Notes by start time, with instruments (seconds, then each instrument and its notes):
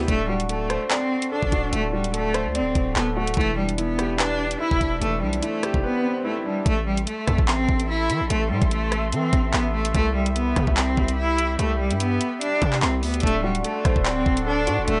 Already playing: grand piano C3 E4 G4 B4 C5
0.08 808-style bass D1, cello A3, grand piano D4, kick, closed hi-hat
0.29 cello G3, grand piano F#4
0.40 closed hi-hat
0.49 cello A3, grand piano A4, closed hi-hat
0.70 grand piano C5, cross-stick, closed hi-hat
0.91 cello C4, grand piano D5, clap
1.22 closed hi-hat
1.32 cello D4, grand piano A4
1.43 808-style bass F#1, kick
1.52 808-style bass D1, grand piano F#4, kick, closed hi-hat
1.73 808-style bass D1, cello A3, grand piano D4, closed hi-hat
1.93 cello G3, grand piano F#4
2.04 closed hi-hat
2.14 cello A3, grand piano A4, closed hi-hat
2.34 grand piano C5, cross-stick, closed hi-hat
2.45 808-style bass D2
2.55 cello C4, grand piano D5, closed hi-hat
2.60 808-style bass D1
2.75 808-style bass D1, kick, closed hi-hat
2.96 808-style bass D1, cello B3, grand piano A4, clap
3.16 cello A3, grand piano F#4
3.27 closed hi-hat
3.34 808-style bass E1, grand piano E3, cello A3, kick, closed hi-hat, swell
3.41 closed hi-hat
3.57 cello G3, grand piano D4
3.69 closed hi-hat
3.78 cello B3, grand piano E4, closed hi-hat
3.99 grand piano G4, cross-stick, closed hi-hat
4.19 cello D4, grand piano B4, clap
4.51 closed hi-hat
4.60 cello E4, grand piano E4
4.71 808-style bass D1, kick
4.81 808-style bass E1, grand piano D4, kick, closed hi-hat
5.01 808-style bass E1, grand piano E3, cello A3, closed hi-hat
5.22 808-style bass B1, cello G3, grand piano D4
5.33 closed hi-hat
5.43 cello A3, grand piano E4, closed hi-hat
5.63 grand piano G4, cross-stick, closed hi-hat
5.74 808-style bass E1, kick
5.84 cello B3, grand piano B4
6.25 cello A3, grand piano E4
6.45 cello G3, grand piano D4
6.66 808-style bass A1, cello A3, ambient pad A4 E5 C6, kick, closed hi-hat
6.86 cello G3
6.97 closed hi-hat
7.07 cello A3, closed hi-hat
7.27 808-style bass E2, kick, cross-stick, closed hi-hat
7.38 808-style bass A1, kick
7.48 cello C4, clap
7.69 808-style bass A1, kick
7.80 closed hi-hat
7.89 cello E4
8.10 808-style bass E3, closed hi-hat
8.21 808-style bass A1
8.30 808-style bass A1, cello A3, closed hi-hat
8.51 808-style bass A2, cello G3
8.62 808-style bass A1, kick, closed hi-hat
8.71 cello A3, closed hi-hat
8.92 cross-stick, closed hi-hat
9.12 808-style bass E3, cello C4, closed hi-hat
9.33 808-style bass A1, kick, closed hi-hat
9.53 808-style bass A1, cello B3, clap
9.74 cello A3
9.85 closed hi-hat
9.94 808-style bass C2, cello A3, ambient pad G4 B5, kick, closed hi-hat
10.15 cello G3
10.26 closed hi-hat
10.36 cello B3, closed hi-hat
10.56 808-style bass C3, kick, cross-stick, closed hi-hat
10.67 808-style bass C2, kick
10.77 cello C4, clap
10.97 808-style bass C2, kick
11.08 closed hi-hat
11.18 cello E4
11.38 closed hi-hat
11.59 808-style bass C2, cello A3, closed hi-hat
11.79 cello G3
11.90 808-style bass G2, closed hi-hat
12.00 cello B3, closed hi-hat
12.21 closed hi-hat
12.41 cello D4, closed hi-hat
12.62 808-style bass C3, kick, closed hi-hat
12.73 clap
12.82 808-style bass C2, cello C4, clap
13.03 808-style bass D2, cello B3, open hi-hat
13.14 closed hi-hat
13.20 808-style bass D1, cello A3, grand piano D4, ambient pad A4 D5 F#5 C6, kick, closed hi-hat
13.27 closed hi-hat
13.44 cello G3, grand piano F#4
13.55 closed hi-hat
13.64 cello A3, grand piano A4, closed hi-hat
13.85 808-style bass A1, grand piano C5, kick, cross-stick, closed hi-hat
13.96 808-style bass D1, kick
14.05 cello C4, grand piano D5, clap
14.26 808-style bass D1, kick
14.37 closed hi-hat
14.47 cello D4, grand piano A4
14.67 808-style bass A2, grand piano F#4, closed hi-hat
14.78 808-style bass D1
14.88 808-style bass D1, cello A3, grand piano D4, closed hi-hat